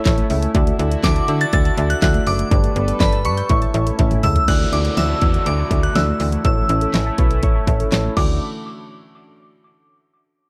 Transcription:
Already playing: A3 C#4 E4
0.05 A1 E4 A4 C#5 E5, kick, snare, clap, closed hi-hat
0.18 A3, closed hi-hat
0.30 C#2 E4 A4 C#5 E5, open hi-hat
0.42 A3, closed hi-hat
0.55 D2 D3 D4 E4 F#4 A4 D5 E5, kick, closed hi-hat
0.67 A3, closed hi-hat
0.79 D2 E4 F#4 A4 D5 E5, closed hi-hat
0.92 F#4, closed hi-hat
1.04 D2 F#4 A4 D5 E5 D6, kick, snare, clap, closed hi-hat
1.16 A5, closed hi-hat
1.28 D3 F#4 A4 D5 E5 E6, closed hi-hat
1.41 F#6 A6, closed hi-hat
1.53 D2 F#4 A4 D5 E5 E6 A6, kick, closed hi-hat
1.65 A5, closed hi-hat
1.77 D2 F#4 A4 D5 E5, closed hi-hat
1.90 F#4 F#6, closed hi-hat
2.02 D2 E4 F#4 A4 D5 E5 F#6, kick, snare, clap, closed hi-hat
2.14 A3, closed hi-hat
2.27 F#1 F#4 A4 D5 E5 D6, open hi-hat
2.39 A3, closed hi-hat
2.51 G1 D3 G3 G4 A4 B4 D5, kick, closed hi-hat
2.64 A3, closed hi-hat
2.76 G1 B3 G4 A4 B4 D5, closed hi-hat
2.88 G4, closed hi-hat
3.00 G1 G4 A4 B4 D5 B5, kick, snare, clap, closed hi-hat
3.12 A5, closed hi-hat
3.25 G2 G4 A4 B4 D5 B5 C#6, closed hi-hat
3.37 G6, closed hi-hat
3.49 A1 A3 C#4 E4 A4 C#5 E5 C#6, kick, closed hi-hat
3.62 A5, closed hi-hat
3.74 A1 E4 A4 C#5 E5, closed hi-hat
3.87 A4, closed hi-hat
3.99 A1 C#4 E4 A4 C#5 E5, kick, closed hi-hat, high tom
4.11 A3, closed hi-hat, mid tom
4.23 C#2 E4 A4 C#5 E5 E6, mid tom, open hi-hat
4.36 A3, closed hi-hat, floor tom
4.48 D2 D3 E3 A3 E4 F#4 D5 F#6, kick, closed hi-hat, crash, downlifter
4.60 A3
4.72 D2 D4 E4 F#4 D5 D6, closed hi-hat
4.85 F#4, closed hi-hat
4.97 D2 E4 F#4 D5 E5 E6, snare, closed hi-hat
5.09 A5
5.21 E2 E4 F#4 D5 D6, kick, closed hi-hat
5.34 closed hi-hat
5.46 D2 E4 F#4 D5 D6, closed hi-hat
5.59 A5
5.71 D2 E4 F#4 D5 E5, kick, closed hi-hat
5.83 F#4 F#6, closed hi-hat
5.95 D2 D4 E4 F#4 D5 E6, snare, closed hi-hat
6.08 A3
6.20 D2 E3 E4 F#4 D5, open hi-hat
6.32 A3, closed hi-hat
6.45 A1 E3 A3 C#4 E4 A4 C#5 E6, kick, closed hi-hat
6.57 A3
6.69 A1 C#4 E4 A4 C#5, closed hi-hat
6.81 A4, closed hi-hat
6.94 A1 E4 A4 C#5 E5, snare, clap, closed hi-hat
7.06 A5
7.18 B1 E4 A4 B4 C#6, kick, closed hi-hat
7.31 closed hi-hat
7.43 A1 E4 A4 C#5 C#6, kick, closed hi-hat
7.55 A5
7.67 A1 E4 A4 C#5 E5, kick, closed hi-hat
7.80 A4, closed hi-hat
7.92 A1 C#4 E4 A4 C#5, snare, clap, closed hi-hat
8.05 A3
8.17 D2 D3 E3 A3 D4 E4 F#4 D6, kick, crash

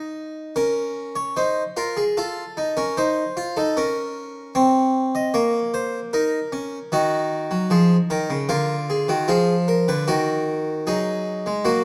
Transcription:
Already playing: D#4
0.56 C#4 A#4
1.16 C#5
1.37 D#4 C5
1.77 F4 A#4
1.97 G#4
2.17 F4 A4
2.57 D#4
2.77 C#4 A#4
2.97 D#4 C5
3.37 F4
3.57 D#4 A4
3.77 C#4 A#4
4.55 C4 C#5
5.15 D#5
5.34 A#3 C#5
5.74 C5
6.13 D#4 A#4
6.52 C#4
6.92 D#3 D#4 F#4
7.51 F#3
7.70 F3 G#4
8.10 D#3 A#4
8.30 C#3
8.49 D3 F4 A#4
8.90 G#4
9.09 D#3 F#4
9.28 F3 F4 G#4
9.68 A#4
9.88 D3 B4
10.08 D#3 F#4 A#4
10.87 F#3 D#4 G#4
11.46 G#3
11.65 F#3 A#3 F#4

